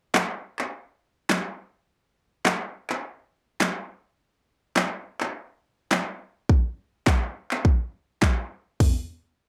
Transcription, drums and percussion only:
0.14 snare medium
0.14 clap loud
0.59 clap medium
1.30 snare medium
1.30 clap loud
2.45 snare medium
2.45 clap loud
2.90 clap medium
3.60 snare medium
3.60 clap loud
4.76 snare medium
4.76 clap loud
5.20 clap medium
5.91 snare medium
5.91 clap loud
6.49 kick loud
7.07 kick loud
7.07 snare medium
7.07 clap loud
7.51 clap medium
7.65 kick loud
8.22 kick loud
8.22 snare medium
8.22 clap loud
8.80 kick loud
8.80 floor tom loud
8.80 open hi-hat medium

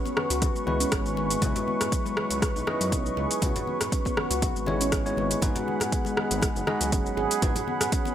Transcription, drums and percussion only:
0.05 muted conga medium
0.05 shaker soft
0.17 cross-stick medium
0.17 high conga medium
0.30 closed hi-hat soft
0.30 shaker medium
0.42 kick loud
0.42 closed hi-hat medium
0.42 muted conga soft
0.42 high conga loud
0.42 shaker medium
0.56 shaker soft
0.67 muted conga soft
0.67 high conga medium
0.80 closed hi-hat soft
0.80 shaker medium
0.92 kick loud
0.92 cross-stick loud
0.92 closed hi-hat medium
0.92 shaker medium
1.06 shaker soft
1.17 muted conga soft
1.30 closed hi-hat soft
1.30 shaker medium
1.42 kick loud
1.42 closed hi-hat medium
1.42 high conga medium
1.42 low conga loud
1.42 shaker medium
1.56 closed hi-hat soft
1.56 muted conga medium
1.56 low conga loud
1.56 shaker soft
1.68 high conga medium
1.81 cross-stick medium
1.81 closed hi-hat soft
1.81 muted conga soft
1.81 low conga medium
1.81 shaker medium
1.92 kick loud
1.92 closed hi-hat soft
1.92 shaker medium
2.06 muted conga soft
2.06 shaker soft
2.17 cross-stick loud
2.17 high conga medium
2.31 closed hi-hat soft
2.31 shaker medium
2.42 kick loud
2.42 cross-stick medium
2.42 closed hi-hat medium
2.42 muted conga soft
2.42 shaker medium
2.56 shaker soft
2.67 cross-stick medium
2.67 muted conga medium
2.67 high conga medium
2.81 closed hi-hat soft
2.81 shaker medium
2.92 kick loud
2.92 closed hi-hat medium
2.92 muted conga soft
2.92 shaker medium
3.06 shaker soft
3.17 muted conga soft
3.31 closed hi-hat soft
3.31 shaker medium
3.42 kick loud
3.42 closed hi-hat medium
3.42 high conga medium
3.42 low conga medium
3.42 shaker medium
3.56 closed hi-hat soft
3.56 muted conga soft
3.56 low conga medium
3.56 shaker soft
3.67 high conga medium
3.81 cross-stick medium
3.81 closed hi-hat soft
3.81 muted conga soft
3.81 low conga medium
3.81 shaker medium
3.92 kick loud
3.92 closed hi-hat medium
3.92 shaker medium
4.05 kick medium
4.05 muted conga soft
4.05 shaker soft
4.17 cross-stick medium
4.17 high conga medium
4.31 closed hi-hat soft
4.31 shaker medium
4.42 kick loud
4.42 closed hi-hat medium
4.42 muted conga soft
4.42 high conga loud
4.42 shaker medium
4.56 shaker soft
4.66 muted conga soft
4.66 high conga medium
4.81 closed hi-hat soft
4.81 shaker medium
4.92 kick loud
4.92 cross-stick medium
4.92 closed hi-hat medium
4.92 muted conga soft
4.92 shaker medium
5.06 shaker soft
5.17 muted conga soft
5.17 high conga medium
5.31 closed hi-hat soft
5.31 shaker medium
5.42 kick loud
5.42 closed hi-hat medium
5.42 high conga medium
5.42 low conga medium
5.42 shaker medium
5.55 closed hi-hat soft
5.55 muted conga soft
5.55 low conga medium
5.55 shaker soft
5.68 high conga medium
5.80 cross-stick medium
5.80 closed hi-hat soft
5.80 muted conga soft
5.80 low conga medium
5.80 shaker medium
5.92 kick loud
5.92 closed hi-hat medium
5.92 shaker medium
6.05 muted conga soft
6.05 shaker soft
6.17 cross-stick medium
6.17 high conga medium
6.31 closed hi-hat soft
6.31 shaker medium
6.42 kick loud
6.42 cross-stick medium
6.42 closed hi-hat medium
6.42 muted conga soft
6.42 shaker medium
6.56 shaker soft
6.67 cross-stick medium
6.67 muted conga soft
6.67 high conga loud
6.81 closed hi-hat soft
6.81 shaker medium
6.92 kick loud
6.92 closed hi-hat medium
6.92 muted conga soft
6.92 shaker medium
7.06 shaker soft
7.17 muted conga soft
7.31 closed hi-hat soft
7.31 shaker medium
7.42 kick loud
7.42 closed hi-hat medium
7.42 high conga medium
7.42 low conga medium
7.42 shaker medium
7.55 closed hi-hat soft
7.55 muted conga medium
7.55 low conga medium
7.55 shaker soft
7.68 high conga medium
7.80 cross-stick medium
7.80 closed hi-hat soft
7.80 muted conga soft
7.80 low conga medium
7.80 shaker medium
7.92 kick loud
7.92 closed hi-hat medium
7.92 shaker medium
8.05 muted conga soft
8.05 shaker soft

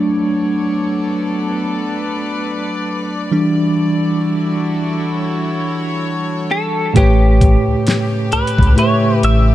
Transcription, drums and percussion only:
6.96 kick loud
6.96 closed hi-hat medium
7.41 kick loud
7.41 closed hi-hat medium
7.87 snare loud
7.87 closed hi-hat medium
8.32 closed hi-hat medium
8.47 closed hi-hat medium
8.58 kick loud
8.63 closed hi-hat soft
8.78 closed hi-hat medium
9.23 closed hi-hat medium

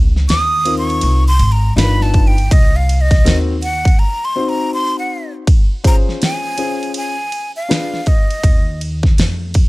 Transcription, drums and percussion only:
0.16 snare soft
0.29 snare loud
0.29 hi-hat pedal medium
0.29 ride medium
0.65 ride medium
0.90 ride soft
1.01 ride medium
1.39 ride medium
1.78 snare loud
1.78 hi-hat pedal medium
1.78 ride medium
2.01 snare soft
2.14 kick medium
2.14 ride soft
2.38 ride soft
2.51 kick loud
2.51 ride medium
2.89 ride medium
3.11 kick medium
3.11 snare soft
3.11 ride soft
3.26 snare loud
3.26 hi-hat pedal medium
3.26 ride medium
3.62 ride medium
3.85 kick medium
3.85 ride soft
5.47 kick loud
5.47 ride medium
5.84 kick medium
5.84 ride medium
6.09 snare soft
6.22 snare loud
6.22 hi-hat pedal medium
6.22 ride medium
6.58 ride medium
6.83 ride soft
6.94 ride medium
7.32 ride medium
7.71 snare loud
7.71 hi-hat pedal medium
7.71 ride medium
7.94 snare soft
8.06 kick medium
8.06 ride medium
8.30 ride soft
8.44 kick loud
8.44 ride medium
8.81 ride medium
9.03 kick medium
9.03 snare soft
9.18 snare loud
9.18 hi-hat pedal soft
9.18 ride medium
9.54 kick medium
9.54 ride medium

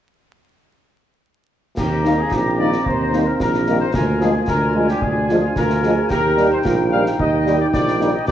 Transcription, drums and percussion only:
1.77 concert bass drum medium
1.77 snare medium
1.77 crash soft
2.05 snare soft
2.31 concert bass drum medium
2.31 snare medium
2.72 snare soft
2.86 concert bass drum medium
3.13 snare soft
3.40 concert bass drum medium
3.40 snare medium
3.54 snare soft
3.67 snare soft
3.94 concert bass drum medium
3.94 snare medium
4.21 snare soft
4.48 concert bass drum medium
4.48 snare medium
4.89 snare soft
5.02 concert bass drum medium
5.29 snare soft
5.56 concert bass drum medium
5.56 snare medium
5.70 snare soft
5.83 snare soft
6.10 concert bass drum medium
6.10 snare medium
6.10 crash soft
6.37 snare soft
6.65 concert bass drum medium
6.65 snare medium
7.06 snare soft
7.19 concert bass drum medium
7.47 snare soft
7.73 concert bass drum medium
7.73 snare medium
7.88 snare medium
8.01 snare soft
8.28 concert bass drum medium
8.28 snare medium

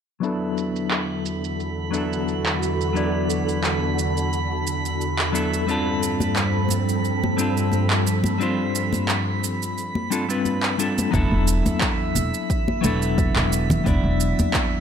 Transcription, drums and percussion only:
0.23 shaker soft
0.58 shaker medium
0.76 shaker soft
0.91 clap medium
0.91 shaker soft
1.26 shaker medium
1.44 shaker soft
1.60 shaker soft
1.94 shaker medium
2.13 shaker soft
2.28 shaker soft
2.46 clap medium
2.63 shaker medium
2.81 shaker soft
2.96 shaker soft
3.30 shaker medium
3.49 shaker soft
3.64 clap medium
3.64 shaker soft
3.99 shaker medium
4.17 shaker soft
4.33 shaker soft
4.67 shaker medium
4.85 shaker soft
5.01 shaker soft
5.19 clap medium
5.35 shaker medium
5.54 shaker soft
5.69 shaker soft
6.03 shaker medium
6.20 high conga medium
6.20 shaker soft
6.36 clap medium
6.36 shaker soft
6.69 high conga medium
6.69 shaker medium
6.89 shaker soft
7.05 shaker soft
7.24 high conga medium
7.39 shaker medium
7.57 shaker soft
7.72 high conga medium
7.72 shaker soft
7.90 clap medium
8.07 shaker medium
8.24 high conga medium
8.24 shaker soft
8.41 shaker soft
8.75 shaker medium
8.93 high conga medium
8.93 shaker soft
9.08 clap medium
9.08 shaker soft
9.44 shaker medium
9.62 shaker soft
9.78 shaker soft
9.95 high conga medium
10.12 shaker medium
10.30 shaker soft
10.45 high conga medium
10.45 shaker soft
10.63 clap medium
10.79 shaker medium
10.98 high conga medium
10.98 shaker soft
11.14 kick loud
11.14 shaker soft
11.47 shaker medium
11.66 high conga medium
11.66 shaker soft
11.81 kick loud
11.81 clap medium
11.81 shaker soft
12.16 high conga medium
12.16 shaker medium
12.34 shaker soft
12.50 kick medium
12.50 shaker soft
12.68 high conga medium
12.84 shaker medium
13.02 shaker soft
13.18 kick loud
13.18 high conga medium
13.18 shaker soft
13.36 clap medium
13.52 shaker medium
13.70 high conga medium
13.70 low conga medium
13.70 shaker soft
13.86 kick loud
13.86 shaker soft
14.20 shaker medium
14.39 high conga medium
14.39 shaker soft
14.54 kick loud
14.54 clap medium
14.54 shaker soft

